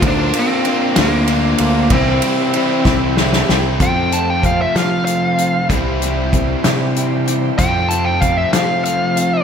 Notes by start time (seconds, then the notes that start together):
Already playing: F4 A#5
0.02 D2 D3 F3 A#3 C4 D4 F4 C5 D6, kick, ride
0.08 D4
0.33 A#3 D4 F4, ride
0.39 C4
0.65 D3 F3 A#3 C4 D4 F4, ride
0.96 D2 D3 F3 A#3 C4 D4 F4, snare, ride
1.01 A#3
1.27 D3 A#3 D4 F4, ride
1.58 D2 A#3 C4 F4, ride
1.63 D4
1.90 C2 C3 E3 G3 C4 E4 G4 G5 C6, kick, ride
2.22 C4 E4, ride
2.26 G3
2.54 E3 G3 C4 E4 G4, ride
2.84 C2 C3 G3 C4 E4 G4, kick, snare
3.17 E3 G3 C4 E4, snare
3.33 snare
3.48 C2 G3 C4 E4 G4, snare
3.80 F2 C3 F3 A3 C4 F4 A4 C5 G5 A5 C6, kick, closed hi-hat
4.11 F3 C4 F4 A4 A5, closed hi-hat
4.30 G5
4.42 F3 C4 F4 A4 F5, kick, closed hi-hat
4.62 E5
4.75 F2 C3 F3 C4 F4 A4 F5, snare, closed hi-hat
5.05 F3 C4 F4 A4 F5, closed hi-hat
5.37 F3 C4 F4 A4, closed hi-hat
5.69 C2 C3 E3 G3 C4 E4 G4 G5, kick, closed hi-hat
6.00 C4 E4 G4, closed hi-hat
6.32 G3 C4 E4 G4, kick, closed hi-hat
6.64 C3 G3 C4 E4 G4, snare, closed hi-hat
6.95 G3 C4 E4 G4, closed hi-hat
7.26 C4 E4 G4, closed hi-hat
7.58 F2 C3 F3 A3 C4 F4 A4 G5 A5, kick, closed hi-hat
7.89 F3 C4 F4 A4 A5, closed hi-hat
8.05 G5
8.21 F3 C4 F4 A4 F5, kick, closed hi-hat
8.37 E5
8.52 F2 C3 F3 C4 F4 A4 F5, snare, closed hi-hat
8.83 F3 C4 F4 A4 F5, closed hi-hat
9.16 F3 C4 F4 A4, closed hi-hat